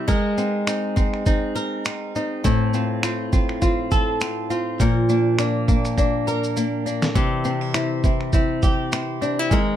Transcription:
Already playing: clean electric guitar C4 E4, nylon-string guitar C4 E4
0.08 nylon-string guitar G#3 A#4, clean electric guitar G#3, kick, shaker
0.38 nylon-string guitar C4, clean electric guitar D#4, shaker
0.67 clean electric guitar C4, nylon-string guitar D#4, finger snap, shaker
0.96 nylon-string guitar C4, clean electric guitar D#4, kick, shaker
1.14 finger snap
1.26 clean electric guitar C4, nylon-string guitar D#4, kick, shaker
1.55 nylon-string guitar A#4, clean electric guitar A#4, shaker
1.85 nylon-string guitar C4, clean electric guitar D#4, finger snap, shaker
2.15 clean electric guitar C4, nylon-string guitar D#4, shaker
2.44 nylon-string guitar A2 A4, clean electric guitar C4, kick, shaker
2.73 nylon-string guitar C4, clean electric guitar F4, shaker
3.03 clean electric guitar C4, nylon-string guitar F4, finger snap, shaker
3.33 nylon-string guitar C4, clean electric guitar F4, kick, shaker
3.49 finger snap
3.62 clean electric guitar C4, nylon-string guitar F4, kick, shaker
3.91 nylon-string guitar A4, clean electric guitar A4, kick, shaker
4.21 nylon-string guitar C4, clean electric guitar F4, finger snap, shaker
4.50 clean electric guitar C4, nylon-string guitar F4, shaker
4.80 nylon-string guitar A#2 A#4, clean electric guitar F3, kick, shaker
5.09 nylon-string guitar A#3, clean electric guitar D4, shaker
5.39 clean electric guitar A#3, nylon-string guitar D4, finger snap, shaker
5.68 nylon-string guitar A#3, clean electric guitar D4, kick, shaker
5.85 finger snap, shaker
5.98 clean electric guitar A#3, nylon-string guitar D4, kick, shaker
6.27 clean electric guitar A#4, nylon-string guitar A#4, shaker
6.44 shaker
6.57 nylon-string guitar A#3, clean electric guitar D4, shaker
6.86 clean electric guitar A#3, nylon-string guitar D4, shaker
7.02 snare, shaker
7.15 nylon-string guitar C3 G4, clean electric guitar E3, kick, shaker
7.44 nylon-string guitar C4, clean electric guitar D4, shaker
7.61 clean electric guitar E4
7.74 clean electric guitar C4, nylon-string guitar E4, finger snap, shaker
8.04 nylon-string guitar C4, clean electric guitar E4, kick, shaker
8.21 finger snap
8.33 clean electric guitar C4, nylon-string guitar E4, kick, shaker
8.62 clean electric guitar G4, nylon-string guitar G4, kick, shaker
8.92 nylon-string guitar C4, clean electric guitar E4, finger snap, shaker
9.22 clean electric guitar C4, nylon-string guitar D4, shaker
9.39 nylon-string guitar E4
9.51 clean electric guitar D#3, nylon-string guitar G#3 A#4, kick, shaker

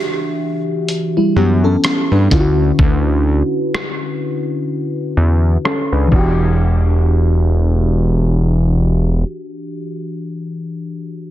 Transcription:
Already playing: fm electric piano E3 D4 F#4 G4 E5
0.88 closed hi-hat
1.17 fm electric piano G3 E4
1.36 analog synth bass F#2, fm electric piano B3 G4
1.64 fm electric piano C#4 A4
1.84 cross-stick, closed hi-hat
2.11 analog synth bass G2, fm electric piano D4 B4
2.30 analog synth bass D2, fm electric piano D3 C#4 E4 F4, kick, closed hi-hat
2.40 fm electric piano F#4
2.79 analog synth bass D2, kick
3.75 cross-stick
5.17 analog synth bass E2
5.65 fm electric piano C#4 A4, cross-stick
5.92 analog synth bass C#2, fm electric piano D4 B4
6.07 fm electric piano E3 D4
6.12 analog synth bass E1, fm electric piano F#4, kick, crash
6.19 fm electric piano G4

